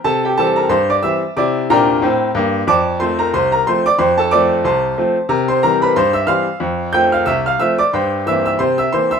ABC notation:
X:1
M:2/4
L:1/16
Q:"Swing 16ths" 1/4=91
K:F
V:1 name="Grand piano"
[Aa] [Gg] [Aa] [Bb] [cc'] [dd'] [ee']2 | [dd']2 [Bgb]6 | [dad']2 [cc'] [Bb] [cc'] [Bb] [cc'] [dd'] | [cc'] [Aa] [dd']2 [cac']4 |
[Bb] [cc'] [Bb] [=B=b] [cc'] [ee'] [fc'f']2- | [fc'f']2 [gg'] [ff'] [ee'] [ff'] [ee'] [dd'] | [cgc']2 [ee'] [ee'] [cc'] [ee'] [cc'] [ec'e'] |]
V:2 name="Grand piano" clef=bass
C,2 [E,G,C]2 G,,2 [E,G,C]2 | [C,E]2 [B,,D]2 [A,,C]2 [G,,B,]2 | F,,2 [F,A,C]2 C,,2 [F,A,C]2 | F,,2 [F,A,C]2 C,,2 [F,A,C]2 |
C,2 [E,G,C]2 G,,2 [E,G,C]2 | F,,2 [F,A,C]2 C,,2 [F,A,C]2 | G,,2 [E,B,C]2 C,2 [E,B,C]2 |]